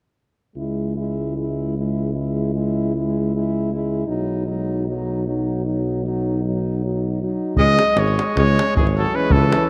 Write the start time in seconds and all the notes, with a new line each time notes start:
0.56 C#2 G#3 E4
0.97 G#3 E4
1.37 G#3 E4
1.77 G#3 E4
2.15 G#3 E4
2.54 G#3 E4
2.95 G#3 E4
3.35 G#3 E4
3.74 G#3 E4
4.07 B1 F#3 D#4
4.47 F#3 D#4
4.87 F#3 D#4
5.26 F#3 D#4
5.65 F#3 D#4
6.04 F#3 D#4
6.44 F#3 D#4
6.84 F#3 D#4
7.23 F#3 D#4
7.56 C#2 G#3 D#5, davul low
7.79 davul high
7.96 G#1 G#3 C#5, davul high
8.08 davul high
8.19 davul high
8.36 C#2 G#3 C#5, davul high, davul low
8.48 davul high
8.59 davul high
8.68 davul high
8.75 G#1 G#4, davul low
8.79 E3
8.87 davul high
8.98 F#3 A4
9.13 E3 G#3 C#4 B4
9.31 C#2 E3 A4, davul low
9.52 E3 C#4, davul high